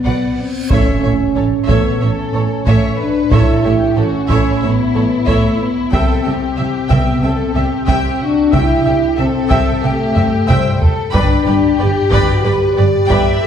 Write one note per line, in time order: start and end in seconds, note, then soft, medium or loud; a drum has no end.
0.00 0.34 B3 medium
0.00 reverse cymbal soft
0.05 0.13 B1 medium
0.05 0.14 B2 soft
0.05 0.36 B4 soft
0.05 0.35 D5 medium
0.05 0.36 F#5 soft
0.39 0.69 C4 medium
0.71 0.79 A1 medium
0.71 0.79 A2 medium
0.71 1.69 C#4 medium
0.71 1.01 A4 medium
0.71 1.01 C#5 soft
0.71 1.01 C#5 medium
0.71 1.01 E5 soft
0.71 taiko medium
0.71 impact medium
1.02 1.11 A1 soft
1.02 1.12 A2 soft
1.02 1.13 A4 soft
1.02 1.11 C#5 soft
1.02 1.13 C#5 soft
1.02 1.10 E5 soft
1.36 1.44 A1 soft
1.36 1.45 A2 soft
1.36 1.44 A4 soft
1.36 1.45 A4 soft
1.36 1.44 C#5 soft
1.36 1.45 C#5 soft
1.68 1.76 A1 medium
1.68 1.77 A2 medium
1.68 2.02 B3 medium
1.68 1.99 A4 medium
1.68 1.98 C#5 medium
1.68 1.99 C#5 medium
1.68 1.99 E5 soft
1.68 taiko medium
2.01 2.09 A1 soft
2.01 2.09 A2 soft
2.01 2.99 C#4 medium
2.01 2.09 A4 soft
2.01 2.62 A4 soft
2.01 2.09 C#5 soft
2.01 2.10 C#5 soft
2.01 2.09 E5 soft
2.33 2.41 A1 soft
2.33 2.42 A2 soft
2.33 2.41 A4 soft
2.33 2.43 A4 soft
2.33 2.41 C#5 soft
2.33 2.43 C#5 soft
2.65 2.74 A1 medium
2.65 2.75 A2 medium
2.65 2.97 A4 soft
2.65 2.98 C#5 medium
2.65 2.97 C#5 medium
2.65 2.97 E5 medium
2.65 taiko medium
2.99 3.32 D4 medium
2.99 3.31 B4 medium
3.31 3.39 A1 medium
3.31 3.40 A2 medium
3.31 3.97 E4 medium
3.31 3.65 A4 soft
3.31 3.63 A4 medium
3.31 3.61 C#5 medium
3.31 3.62 C#5 medium
3.31 3.62 E5 medium
3.31 taiko medium
3.63 3.71 A1 soft
3.63 3.73 A2 soft
3.63 3.97 G4 soft
3.63 3.73 A4 soft
3.63 3.72 C#5 soft
3.63 3.73 C#5 soft
3.63 3.72 E5 soft
3.96 4.04 A1 soft
3.96 4.06 A2 soft
3.96 4.61 C#4 medium
3.96 4.30 F#4 soft
3.96 4.04 A4 soft
3.96 4.06 A4 soft
3.96 4.04 C#5 soft
3.96 4.06 C#5 soft
4.29 4.37 A1 medium
4.29 4.38 A2 medium
4.29 5.90 E4 medium
4.29 4.60 A4 medium
4.29 4.60 C#5 medium
4.29 4.60 E5 medium
4.29 taiko medium
4.61 4.71 A1 soft
4.61 4.71 A2 soft
4.61 5.28 B3 medium
4.61 4.70 A4 soft
4.61 4.69 C#5 soft
4.61 4.71 C#5 soft
4.61 4.69 E5 soft
4.94 5.03 A1 soft
4.94 5.03 A2 soft
4.94 5.02 A4 soft
4.94 5.04 A4 soft
4.94 5.02 C#5 soft
4.94 5.04 C#5 soft
5.26 5.36 A1 medium
5.26 5.35 A2 medium
5.26 5.60 A3 medium
5.26 5.58 A4 medium
5.26 5.57 C#5 medium
5.26 5.58 C#5 soft
5.26 5.57 E5 medium
5.26 taiko medium
5.61 5.93 B3 medium
5.92 6.01 C2 medium
5.92 6.01 C3 medium
5.92 6.91 C4 medium
5.92 6.25 A4 medium
5.92 6.24 E5 medium
5.92 6.23 G5 medium
5.92 taiko medium
6.24 6.34 C2 soft
6.24 6.34 C3 soft
6.24 7.23 G4 medium
6.24 6.35 E5 soft
6.24 6.32 G5 soft
6.57 6.66 C2 soft
6.57 6.66 C3 soft
6.57 6.65 E5 medium
6.57 6.66 E5 soft
6.89 6.99 C2 medium
6.89 6.99 C3 medium
6.89 7.24 B3 medium
6.89 7.21 E5 medium
6.89 7.20 G5 medium
6.89 taiko medium
7.22 7.31 C2 soft
7.22 7.32 C3 soft
7.22 8.21 C4 medium
7.22 7.54 A4 medium
7.22 7.31 E5 soft
7.22 7.31 G5 medium
7.55 7.63 C2 soft
7.55 7.64 C3 soft
7.55 7.86 G4 medium
7.55 7.64 E5 soft
7.87 7.96 C2 medium
7.87 7.96 C3 medium
7.87 8.20 G4 medium
7.87 8.19 E5 medium
7.87 8.18 G5 medium
7.87 taiko medium
8.20 8.54 D4 medium
8.20 8.53 F#4 medium
8.52 8.61 C2 medium
8.52 8.62 C3 medium
8.52 9.02 E4 medium
8.52 9.17 G4 medium
8.52 8.84 E5 medium
8.52 8.84 G5 medium
8.52 taiko medium
8.85 8.94 C2 medium
8.85 8.94 C3 soft
8.85 8.94 E5 soft
8.85 8.93 G5 soft
9.18 9.26 C2 medium
9.18 9.27 C3 medium
9.18 9.83 C4 medium
9.18 9.83 A4 medium
9.18 9.26 E5 soft
9.18 9.26 E5 medium
9.50 9.60 C2 medium
9.50 9.60 C3 medium
9.50 9.81 E5 medium
9.50 9.81 G5 medium
9.50 taiko medium
9.82 9.92 C2 medium
9.82 9.92 C3 soft
9.82 10.49 A3 medium
9.82 10.48 G4 medium
9.82 9.91 E5 soft
9.82 9.92 G5 medium
10.16 10.25 C2 medium
10.16 10.25 C3 medium
10.16 10.24 E5 medium
10.16 10.25 E5 medium
10.16 taiko low-mid medium
10.48 10.57 C2 medium
10.48 10.58 C3 medium
10.48 10.83 G3 medium
10.48 10.81 C5 medium
10.48 10.79 E5 medium
10.48 10.79 G5 medium
10.48 taiko low-mid medium
10.81 11.13 A4 medium
10.81 taiko low medium
11.14 11.22 G1 medium
11.14 11.23 G2 medium
11.14 11.76 D4 medium
11.14 11.44 B4 medium
11.14 11.47 B4 medium
11.14 11.44 D5 medium
11.14 11.44 G5 medium
11.14 11.44 B5 medium
11.14 taiko medium
11.46 11.54 G1 soft
11.46 11.55 G2 soft
11.46 12.45 G4 medium
11.46 11.55 B4 soft
11.46 11.55 D5 soft
11.46 11.55 G5 soft
11.46 11.55 B5 soft
11.79 11.87 G1 soft
11.79 11.88 G2 soft
11.79 12.29 G4 medium
11.79 11.87 B4 medium
11.79 11.87 D5 medium
11.79 11.87 D5 soft
11.79 11.87 G5 soft
12.11 12.20 G1 medium
12.11 12.20 G2 medium
12.11 12.43 B4 medium
12.11 12.43 D5 medium
12.11 12.42 G5 medium
12.11 12.42 B5 medium
12.11 taiko medium
12.30 12.45 F#4 medium
12.44 12.52 G1 soft
12.44 12.53 G2 soft
12.44 13.41 G4 medium
12.44 12.76 B4 medium
12.44 12.53 B4 soft
12.44 12.53 D5 soft
12.44 12.53 G5 medium
12.44 12.53 B5 medium
12.77 12.85 G1 soft
12.77 12.86 G2 medium
12.77 12.86 B4 soft
12.77 12.85 D5 soft
12.77 13.10 D5 medium
12.77 12.86 D5 medium
12.77 12.85 G5 soft
13.09 13.17 G1 medium
13.09 13.19 G2 medium
13.09 13.41 B4 medium
13.09 13.40 D5 medium
13.09 13.47 E5 medium
13.09 13.40 G5 medium
13.09 13.40 B5 medium
13.09 taiko medium
13.41 13.47 A4 medium